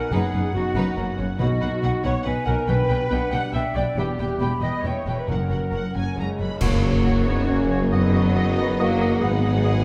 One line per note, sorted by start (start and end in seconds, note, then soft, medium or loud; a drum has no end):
0.00 0.13 B2 soft
0.00 0.11 B3 medium
0.00 0.33 B3 soft
0.00 0.11 D#4 medium
0.00 0.53 F#4 soft
0.00 0.14 A#4 medium
0.00 0.75 B4 soft
0.00 0.99 D#5 soft
0.00 1.36 F#5 soft
0.00 0.14 G#5 medium
0.11 0.20 F#1 medium
0.11 0.19 F#2 medium
0.11 0.96 F#2 medium
0.11 0.53 B3 medium
0.11 0.31 D#4 medium
0.11 0.53 D#4 medium
0.11 0.54 G#4 medium
0.11 0.55 G#4 medium
0.11 0.32 B4 medium
0.11 1.11 F#5 medium
0.33 0.42 F#1 soft
0.33 0.41 F#2 soft
0.33 0.99 B3 soft
0.33 0.41 D#4 soft
0.33 0.41 B4 soft
0.54 0.63 F#1 soft
0.54 0.62 F#2 soft
0.54 0.96 B3 medium
0.54 0.96 D#4 medium
0.54 0.64 D#4 medium
0.54 1.18 F#4 soft
0.54 0.64 F#4 medium
0.54 1.18 F#4 medium
0.76 0.85 F#1 medium
0.76 0.84 F#2 medium
0.76 0.96 D#4 medium
0.76 0.99 B4 medium
0.76 0.96 B4 medium
0.97 1.06 F#1 medium
0.97 1.42 F#2 medium
0.97 1.06 F#2 medium
0.97 1.39 A#3 medium
0.97 1.40 C#4 medium
0.97 1.06 C#4 soft
0.97 1.05 A#4 soft
1.17 1.28 F#1 medium
1.17 1.28 F#2 medium
1.17 1.25 C#4 medium
1.17 1.42 C#4 soft
1.17 1.26 F#4 medium
1.17 1.83 F#4 soft
1.38 1.49 B1 medium
1.38 2.00 B2 medium
1.38 1.48 B2 medium
1.38 2.68 B2 medium
1.38 2.65 B3 medium
1.38 1.46 D#4 medium
1.38 2.65 D#4 medium
1.38 2.00 F#4 medium
1.38 2.01 F#4 medium
1.38 1.46 B4 medium
1.38 1.82 D#5 medium
1.38 1.48 F#5 medium
1.60 1.70 B1 medium
1.60 1.70 B2 medium
1.60 2.89 B3 soft
1.60 1.68 D#4 medium
1.60 1.68 B4 medium
1.60 1.70 F#5 medium
1.82 1.92 B1 medium
1.82 1.90 B2 medium
1.82 1.91 D#4 soft
1.82 2.71 F#4 medium
1.82 1.91 B4 medium
1.82 2.25 F#5 medium
1.82 1.92 F#5 medium
2.03 2.13 B1 medium
2.03 2.12 B2 medium
2.03 2.11 D#4 medium
2.03 2.12 B4 medium
2.03 2.46 B4 soft
2.03 2.25 C#5 medium
2.03 2.15 C#5 medium
2.03 2.12 F#5 medium
2.24 2.34 B1 medium
2.24 2.34 B2 medium
2.24 2.33 D#4 soft
2.24 2.33 B4 soft
2.24 2.46 B4 medium
2.24 2.70 D#5 medium
2.24 2.32 F#5 medium
2.24 2.71 G#5 medium
2.45 2.55 B1 medium
2.45 2.56 B2 medium
2.45 2.56 D#4 medium
2.45 2.67 A#4 medium
2.45 2.71 A#4 medium
2.45 3.31 B4 soft
2.45 2.55 B4 medium
2.45 2.53 F#5 medium
2.67 2.76 B1 medium
2.67 2.77 B2 medium
2.67 3.29 B2 medium
2.67 3.99 B2 medium
2.67 3.94 G3 medium
2.67 3.94 D4 medium
2.67 2.76 D4 medium
2.67 2.76 B4 medium
2.67 3.31 B4 medium
2.67 3.33 B4 medium
2.67 2.76 G5 medium
2.67 3.11 G5 medium
2.89 2.97 B1 medium
2.89 2.99 B2 medium
2.89 4.19 B3 soft
2.89 2.98 D4 soft
2.89 2.98 B4 soft
2.89 2.97 G5 medium
3.11 3.19 B1 medium
3.11 3.19 B2 medium
3.11 3.20 D4 medium
3.11 4.40 G4 soft
3.11 3.20 B4 medium
3.11 3.54 F#5 medium
3.11 3.19 G5 medium
3.32 3.40 B1 medium
3.32 3.41 B2 medium
3.32 3.41 D4 medium
3.32 3.75 B4 soft
3.32 3.41 B4 medium
3.32 3.54 F#5 medium
3.32 3.44 F#5 medium
3.32 3.40 G5 medium
3.53 3.61 B1 medium
3.53 3.63 B2 medium
3.53 3.63 D4 soft
3.53 3.63 B4 soft
3.53 3.99 D5 soft
3.53 3.61 E5 medium
3.53 3.76 E5 medium
3.53 3.61 G5 medium
3.53 4.12 G5 medium
3.74 3.83 B1 medium
3.74 3.85 B2 medium
3.74 3.85 D4 soft
3.74 4.62 B4 soft
3.74 3.85 B4 soft
3.74 3.82 D5 medium
3.74 4.00 D5 medium
3.74 3.85 G5 medium
3.95 4.05 E1 medium
3.95 5.30 E2 medium
3.95 4.06 E2 medium
3.95 5.12 G3 medium
3.95 5.12 B3 medium
3.95 4.06 E4 medium
3.95 4.60 G4 medium
3.95 4.62 G4 medium
3.95 4.06 B4 medium
3.95 4.07 G5 soft
4.18 4.26 E1 medium
4.18 4.27 E2 soft
4.18 5.30 B3 soft
4.18 4.26 E4 soft
4.18 4.27 B4 soft
4.18 4.28 G5 soft
4.40 4.48 E1 medium
4.40 4.49 E2 medium
4.40 4.48 E4 soft
4.40 5.30 G4 soft
4.40 4.48 B4 soft
4.40 4.50 G5 medium
4.40 4.81 B5 medium
4.61 4.69 E1 soft
4.61 4.70 E2 medium
4.61 4.69 E4 soft
4.61 4.69 B4 soft
4.61 5.06 B4 soft
4.61 4.83 D#5 medium
4.61 4.88 D#5 medium
4.61 4.71 G5 soft
4.82 4.92 E1 soft
4.82 4.93 E2 soft
4.82 4.90 E4 soft
4.82 4.91 B4 soft
4.82 5.16 C#5 medium
4.82 5.30 E5 soft
4.82 5.28 G5 medium
4.82 4.93 G5 soft
4.87 5.18 C#5 medium
5.06 5.14 E1 soft
5.06 5.15 E2 soft
5.06 5.14 E4 soft
5.06 5.14 B4 soft
5.06 5.30 B4 soft
5.06 5.16 G5 soft
5.17 5.28 B4 soft
5.17 5.32 B4 medium
5.26 5.37 F#1 soft
5.26 5.91 F#2 medium
5.26 6.61 F#2 soft
5.26 5.37 F#2 soft
5.26 6.16 F#3 soft
5.26 5.35 C#4 soft
5.26 6.16 C#4 soft
5.26 5.34 A#4 soft
5.26 6.18 A#4 medium
5.26 6.38 F#5 soft
5.31 5.39 F#5 soft
5.49 5.58 F#1 soft
5.49 5.58 F#2 soft
5.49 7.05 F#3 soft
5.49 5.57 C#4 soft
5.49 5.57 A#4 soft
5.49 5.60 F#5 soft
5.70 5.81 F#1 soft
5.70 5.81 F#2 soft
5.70 5.78 C#4 soft
5.70 6.39 F#4 soft
5.70 5.78 A#4 soft
5.70 5.94 F#5 medium
5.94 6.04 F#1 soft
5.94 6.03 F#2 soft
5.94 6.02 C#4 soft
5.94 7.26 C#4 soft
5.94 6.02 A#4 soft
5.94 6.17 G#5 soft
6.16 6.26 F#1 soft
6.16 6.25 F#2 soft
6.16 6.58 C#3 medium
6.16 6.59 G#3 medium
6.16 6.24 C#4 soft
6.16 6.24 A#4 soft
6.16 7.94 C#5 soft
6.20 6.28 A#5 soft
6.39 6.48 F#1 soft
6.39 6.47 F#2 soft
6.39 6.47 C#4 soft
6.39 7.48 F#4 soft
6.39 6.47 A#4 soft
6.39 6.62 B5 soft
6.61 9.17 F#1 medium
6.61 9.17 F#2 medium
6.61 7.23 F#2 medium
6.61 7.91 F#2 medium
6.61 7.26 F#3 medium
6.61 7.26 A#3 medium
6.61 7.89 F#4 medium
6.61 6.72 F#4 medium
6.61 6.71 C#5 medium
6.61 7.90 C#5 medium
6.61 6.67 F#5 medium
6.61 concert bass drum medium
6.61 crash medium
6.84 7.94 C#3 soft
6.84 6.94 F#4 medium
6.84 6.94 C#5 soft
6.84 6.90 F#5 soft
7.06 8.35 F#3 medium
7.06 7.15 F#4 medium
7.06 7.16 C#5 medium
7.06 7.12 F#5 medium
7.27 7.49 B3 medium
7.27 7.69 C#4 soft
7.27 7.49 D#4 medium
7.27 7.37 F#4 soft
7.27 7.38 C#5 medium
7.27 7.34 F#5 medium
7.48 7.81 A#3 medium
7.48 7.82 C#4 medium
7.48 7.59 F#4 medium
7.48 8.78 F#4 medium
7.48 7.58 C#5 medium
7.48 7.54 F#5 medium
7.70 7.94 C#4 medium
7.70 7.80 F#4 medium
7.70 7.81 C#5 medium
7.70 7.76 F#5 medium
7.82 7.91 F#3 medium
7.82 7.92 A#3 medium
7.92 9.23 F#2 medium
7.92 8.77 F#3 loud
7.92 8.79 B3 loud
7.92 8.77 D#4 medium
7.92 8.02 F#4 medium
7.92 8.02 D#5 medium
7.92 9.22 D#5 medium
7.92 7.98 F#5 medium
8.13 9.23 D#3 medium
8.13 8.23 F#4 medium
8.13 8.24 D#5 medium
8.13 8.21 F#5 medium
8.35 9.84 F#3 medium
8.35 8.45 F#4 medium
8.35 8.46 D#5 medium
8.35 8.41 F#5 medium
8.56 8.66 F#4 medium
8.56 8.68 D#5 medium
8.56 8.63 F#5 medium
8.77 9.20 F#3 loud
8.77 9.22 A#3 loud
8.77 8.87 F#4 medium
8.77 9.21 F#4 medium
8.77 9.84 F#4 medium
8.77 8.89 D#5 medium
8.77 8.86 F#5 medium
8.99 9.84 D#4 medium
8.99 9.09 F#4 medium
8.99 9.11 D#5 medium
8.99 9.06 F#5 medium
9.19 9.84 G#1 medium
9.19 9.84 G#2 medium
9.19 9.84 G#3 medium
9.19 9.84 B3 loud
9.19 9.63 D#4 medium
9.19 9.29 G#4 medium
9.19 9.31 D#5 medium
9.19 9.84 F#5 medium
9.19 9.28 F#5 medium
9.42 9.84 D#3 medium
9.42 9.52 G#4 medium
9.42 9.52 D#5 medium
9.42 9.50 F#5 medium
9.63 9.84 B3 medium
9.63 9.73 G#4 medium
9.63 9.84 G#4 medium
9.63 9.74 D#5 medium
9.63 9.71 F#5 medium